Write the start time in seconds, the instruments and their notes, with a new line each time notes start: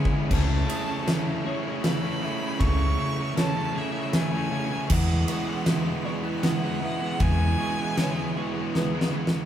Already playing: overdriven electric guitar C#3 G#3 C#4 E4, clean electric guitar G#3 B3 G#4, ambient pad B4 E5 B5, felt piano B4
0.05 kick
0.10 overdriven electric guitar G#3 C#4 E4
0.29 fingered electric bass C#2, overdriven electric guitar C#3 A3 C#4 E4, clean electric guitar C#3, ambient pad A3 C#6, violin A5, kick, crash
0.50 overdriven electric guitar A3 C#4 E4
0.67 overdriven electric guitar C#3 A3 C#4 E4, clean electric guitar G#4, ride
0.87 overdriven electric guitar A3 C#4 E4
1.06 overdriven electric guitar C#3 A3 C#4 E4, clean electric guitar C#4, snare, ride
1.25 overdriven electric guitar A3 C#4 E4
1.43 overdriven electric guitar C#3 A3 C#4 E4, clean electric guitar G#4, felt piano C#5
1.63 overdriven electric guitar A3 C#4 E4
1.83 clean electric guitar A3, violin B5, snare, ride
2.01 overdriven electric guitar A3 C#4 E4
2.21 overdriven electric guitar C#3 A3 C#4 E4, clean electric guitar C#4, felt piano E5
2.39 overdriven electric guitar A3 C#4 E4
2.58 fingered electric bass C#2, overdriven electric guitar C#3 A3 C#4 E4, clean electric guitar C#3, violin C#6, kick, ride
2.77 overdriven electric guitar A3 C#4 E4
2.97 overdriven electric guitar C#3 A3 C#4 E4
3.16 overdriven electric guitar A3 C#4 E4
3.34 overdriven electric guitar C#3 A3 C#4 E4, clean electric guitar C#4, felt piano C#5, snare, ride
3.39 violin A5
3.55 overdriven electric guitar A3 C#4 E4
3.74 overdriven electric guitar C#3 A3 C#4 E4, clean electric guitar G#4, violin E5
3.93 overdriven electric guitar A3 C#4 E4
4.13 clean electric guitar A3, violin G#5, snare, ride
4.31 overdriven electric guitar A3 C#4 E4
4.49 overdriven electric guitar C#3 A3 C#4 E4, clean electric guitar C#4
4.70 overdriven electric guitar A3 C#4 E4
4.90 fingered electric bass E2, clean electric guitar E2, overdriven electric guitar E3 G#3 B3 E4, ambient pad G#4 F#5 B5, violin F#5, kick, crash
5.08 overdriven electric guitar G#3 B3 E4
5.27 overdriven electric guitar E3 G#3 B3 E4, clean electric guitar F#4, felt piano B4, ride
5.47 overdriven electric guitar G#3 B3 E4
5.65 overdriven electric guitar E3 G#3 B3 E4, clean electric guitar B3, snare, ride
5.85 overdriven electric guitar G#3 B3 E4
6.04 overdriven electric guitar E3 G#3 B3 E4, clean electric guitar F#4, felt piano D5
6.23 overdriven electric guitar G#3 B3 E4
6.43 clean electric guitar G#3, violin F#5, snare, ride
6.61 overdriven electric guitar G#3 B3 E4
6.79 overdriven electric guitar E3 G#3 B3 E4, clean electric guitar B3
6.84 felt piano E5
7.00 overdriven electric guitar G#3 B3 E4
7.17 fingered electric bass E2, clean electric guitar E2, overdriven electric guitar E3 G#3 B3 E4, violin G#5, kick, ride
7.22 ambient pad C#6
7.38 overdriven electric guitar G#3 B3 E4
7.57 overdriven electric guitar E3 G#3 B3 E4, clean electric guitar F#4
7.76 overdriven electric guitar G#3 B3 E4
7.96 overdriven electric guitar E3 G#3 B3 E4, clean electric guitar B3, felt piano C#5, snare, ride
8.16 overdriven electric guitar G#3 B3 E4
8.35 overdriven electric guitar E3 G#3 B3 E4, clean electric guitar F#4
8.54 overdriven electric guitar G#3 B3 E4
8.75 clean electric guitar G#3, felt piano B4, snare
8.93 overdriven electric guitar G#3 B3 E4
9.01 snare
9.14 overdriven electric guitar E3 G#3 B3 E4, clean electric guitar B3
9.27 snare
9.33 overdriven electric guitar G#3 B3 E4